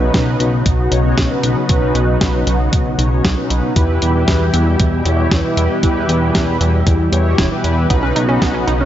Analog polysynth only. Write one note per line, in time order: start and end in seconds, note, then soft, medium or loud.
0.01 0.37 B2 medium
0.01 0.37 C#4 medium
0.01 0.37 D#4 medium
0.01 0.37 B4 medium
0.40 0.50 B2 medium
0.40 0.50 C#4 medium
0.40 0.50 D#4 medium
0.40 0.50 B4 medium
0.92 1.27 B2 medium
0.92 1.27 C#4 medium
0.92 1.27 D#4 medium
0.92 1.27 C#5 medium
1.30 1.66 B2 medium
1.30 1.66 C#4 medium
1.30 1.66 D#4 medium
1.30 1.66 B4 medium
1.69 2.05 B2 medium
1.69 2.05 C#4 medium
1.69 2.05 D#4 medium
1.69 2.05 B4 loud
2.08 2.44 B2 medium
2.08 2.44 C#4 medium
2.08 2.44 D#4 medium
2.08 2.44 B4 medium
2.47 2.57 B2 medium
2.47 2.57 C#4 medium
2.47 2.57 D#4 medium
2.47 2.56 B4 medium
2.99 3.34 B2 medium
2.99 3.34 C#4 medium
2.99 3.34 D#4 medium
2.99 3.34 C#5 medium
3.37 3.73 B2 medium
3.37 3.73 C#4 medium
3.37 3.73 D#4 medium
3.37 3.73 B4 medium
3.76 4.12 E3 medium
3.76 4.12 E4 medium
3.76 4.12 G4 medium
3.76 4.12 B4 loud
4.15 4.51 E3 medium
4.15 4.51 E4 medium
4.15 4.51 G4 medium
4.15 4.51 B4 medium
4.54 4.64 E3 medium
4.54 4.63 E4 medium
4.54 4.63 G4 medium
4.54 4.63 B4 medium
5.06 5.41 E3 medium
5.06 5.41 E4 medium
5.06 5.41 G4 medium
5.06 5.41 C#5 medium
5.44 5.80 E3 medium
5.44 5.80 E4 medium
5.44 5.80 G4 medium
5.44 5.80 B4 medium
5.83 6.19 E3 loud
5.83 6.19 E4 medium
5.83 6.19 G4 medium
5.83 6.19 B4 loud
6.22 6.58 E3 medium
6.22 6.58 E4 medium
6.22 6.58 G4 medium
6.22 6.58 B4 medium
6.61 6.70 E3 medium
6.61 6.70 E4 medium
6.61 6.70 G4 medium
6.61 6.70 B4 medium
7.12 7.48 E3 medium
7.12 7.48 E4 medium
7.12 7.48 G4 medium
7.12 7.48 C#5 medium
7.51 7.87 E3 medium
7.51 7.87 E4 medium
7.51 7.87 G4 medium
7.51 7.87 B4 medium
7.90 8.26 B2 medium
7.90 8.26 C#4 medium
7.90 8.26 D#4 medium
7.90 8.26 B4 loud
8.29 8.64 B2 medium
8.29 8.64 C#4 medium
8.29 8.64 D#4 medium
8.29 8.64 B4 medium
8.68 8.77 B2 medium
8.68 8.77 C#4 medium
8.68 8.77 D#4 medium
8.68 8.77 B4 medium